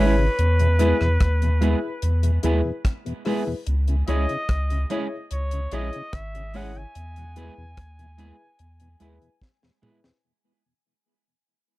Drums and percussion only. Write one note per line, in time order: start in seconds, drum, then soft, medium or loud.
0.39 closed hi-hat medium
0.59 closed hi-hat soft
0.79 closed hi-hat medium
1.01 cross-stick medium
1.20 kick loud
1.20 cross-stick loud
1.20 closed hi-hat medium
1.42 closed hi-hat medium
1.62 closed hi-hat medium
2.02 closed hi-hat medium
2.23 closed hi-hat medium
2.43 closed hi-hat medium
2.85 kick loud
2.85 cross-stick loud
2.85 closed hi-hat medium
3.06 closed hi-hat soft
3.25 cross-stick medium
3.25 open hi-hat medium
3.67 closed hi-hat medium
3.88 closed hi-hat soft
4.08 closed hi-hat medium
4.29 closed hi-hat soft
4.49 kick loud
4.49 cross-stick loud
4.49 closed hi-hat medium
4.70 closed hi-hat medium
4.90 closed hi-hat medium
5.31 closed hi-hat medium
5.51 closed hi-hat medium
5.72 closed hi-hat medium
5.93 closed hi-hat soft
6.13 kick loud
6.13 cross-stick loud
6.13 closed hi-hat medium
6.35 closed hi-hat medium
6.54 open hi-hat medium
6.75 closed hi-hat soft
6.95 closed hi-hat medium
7.16 closed hi-hat medium
7.36 closed hi-hat medium
7.77 kick loud
7.77 cross-stick loud
7.77 closed hi-hat medium
7.99 closed hi-hat medium
8.19 closed hi-hat medium
8.59 closed hi-hat medium
8.80 closed hi-hat medium
9.00 closed hi-hat medium
9.22 closed hi-hat soft
9.42 kick loud
9.42 snare medium
9.63 snare medium
9.83 mid tom medium
10.04 snare medium